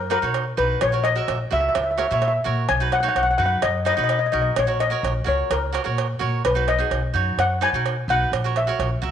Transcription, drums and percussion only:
0.11 cowbell
0.34 cowbell
0.81 cowbell
1.05 cowbell
1.28 cowbell
1.75 cowbell
1.98 cowbell
2.22 cowbell
2.69 cowbell
2.92 cowbell
3.16 cowbell
3.62 cowbell
3.86 cowbell
4.09 cowbell
4.56 cowbell
4.80 cowbell
5.05 cowbell
5.51 cowbell
5.75 cowbell
5.98 cowbell
6.45 cowbell
6.68 cowbell
6.91 cowbell
7.39 cowbell
7.62 cowbell
7.86 cowbell
8.33 cowbell
8.56 cowbell
8.80 cowbell

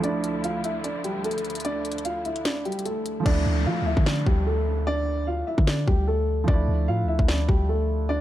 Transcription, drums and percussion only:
0.04 closed hi-hat
0.24 closed hi-hat
0.44 closed hi-hat
0.64 closed hi-hat
0.84 closed hi-hat
1.04 closed hi-hat
1.24 closed hi-hat
1.31 closed hi-hat
1.38 closed hi-hat
1.45 closed hi-hat
1.50 closed hi-hat
1.55 closed hi-hat
1.60 closed hi-hat
1.65 closed hi-hat
1.85 closed hi-hat
1.92 closed hi-hat
1.98 closed hi-hat
2.05 closed hi-hat
2.25 closed hi-hat
2.36 closed hi-hat
2.45 snare, closed hi-hat
2.65 closed hi-hat
2.72 closed hi-hat
2.79 closed hi-hat
2.86 closed hi-hat
3.06 closed hi-hat
3.26 kick, crash
3.97 kick
4.06 snare
4.26 kick
5.58 kick
5.67 snare
5.88 kick
6.48 kick
7.19 kick
7.28 snare
7.49 kick

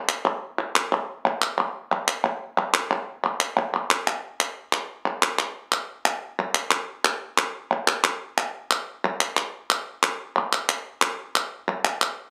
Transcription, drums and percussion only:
0.09 clap
0.59 clap
0.76 clap
0.92 clap
1.25 clap
1.42 clap
1.92 clap
2.08 clap
2.58 clap
2.74 clap
2.91 clap
3.24 clap
3.40 clap
3.74 clap
3.90 clap
4.07 clap
4.40 clap
4.73 clap
5.23 clap
5.39 clap
5.72 clap
6.05 clap
6.55 clap
6.71 clap
7.05 clap
7.38 clap
7.88 clap
8.04 clap
8.38 clap
8.71 clap
9.20 clap
9.37 clap
9.70 clap
10.03 clap
10.36 clap
10.53 clap
10.69 clap
11.02 clap
11.35 clap
11.85 clap
12.01 clap

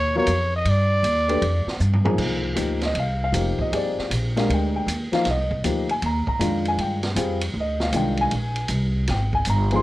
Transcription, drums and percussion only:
0.27 hi-hat pedal, ride
0.65 ride
1.04 hi-hat pedal, ride
1.29 ride
1.42 ride
1.68 snare
1.80 hi-hat pedal
1.93 floor tom
2.05 floor tom
2.18 kick, crash
2.57 hi-hat pedal, ride
2.82 snare, ride
2.95 ride
3.34 hi-hat pedal, ride
3.59 kick
3.73 ride
3.99 snare
4.11 hi-hat pedal, ride
4.37 snare, ride
4.50 ride
4.88 hi-hat pedal, ride
5.13 snare, ride
5.25 snare, ride
5.51 kick
5.64 hi-hat pedal, ride
5.89 ride
6.02 ride
6.27 kick
6.41 hi-hat pedal, ride
6.65 ride
6.79 ride
7.03 snare, ride
7.16 hi-hat pedal, ride
7.41 ride
7.80 snare
7.92 hi-hat pedal, ride
8.17 ride
8.31 ride
8.55 ride
8.68 hi-hat pedal, ride
9.07 snare, ride
9.33 kick
9.45 hi-hat pedal, ride
9.71 ride

